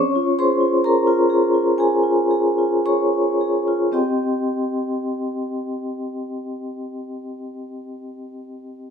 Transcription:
Already playing: C#4 C#5 C#6
0.15 F4
0.39 G#4 C5 C6
0.61 F4
0.84 G#4 A#4 A#5
1.07 F4
1.30 G#4
1.54 F4
1.78 G#4 G#5
2.03 F4
2.31 G#4
2.58 F4
2.86 G#4 C#5 C#6
3.13 F4
3.41 G#4
3.68 F4
3.92 C4 G4 D#5 G5 C6

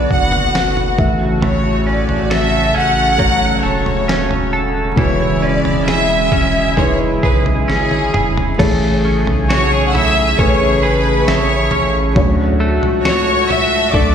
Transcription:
Already playing: D3 B3 F#4 D5
0.11 F#1 F#5, kick
0.32 floor tom
0.55 F#1, snare
0.77 floor tom
0.98 A1 A2 C#3 E3 A3 F#4 E5, kick
1.42 A2 C#5, floor tom
1.87 C#4 D5
2.09 A1, floor tom
2.30 A4 E5, snare
2.75 A1 C#4 F#5
3.17 F#3 A3 F#4 C#5, kick, floor tom
3.63 E1 A4 C#5
3.86 floor tom
4.08 C#4, snare
4.31 floor tom
4.53 A4
4.96 E1 B2 E3 G#3 E4 B4 C#5, kick, floor tom
5.42 C#4 D5
5.65 E1, floor tom
5.86 G#4 E5, snare
6.32 E1 C#4, kick, floor tom
6.77 G#3 E4 B4 C#5, kick, floor tom
7.23 B1 G#4 B4, kick
7.46 floor tom
7.68 G#1 C#4 G#4, snare
7.91 high tom
8.14 E1 G#4, mid tom
8.37 floor tom
8.58 A1 A2 C#3 E3 A3 G#4 C#5, kick, floor tom, crash
9.05 C#4
9.27 B1, floor tom
9.50 F#4 C#5 C#6, snare
9.72 G#4
9.89 F#5
9.95 E4 E5 E6, floor tom
10.38 A1 A3 C#4 G#4 B4 C#5 C#6, kick, floor tom
10.83 G#4 B4 B5
11.28 A1 E4 C#5 C#6, snare
11.71 A1 C#4, floor tom
12.15 D2 A2 F#3 A3 D4 F#4 C#5, kick, floor tom
12.60 A3
12.83 C#2, floor tom
13.05 F#4 C#5 C#6, snare
13.49 E5 E6, floor tom
13.92 D2 F#3 A3 D4 A4 D5 D6, kick, floor tom

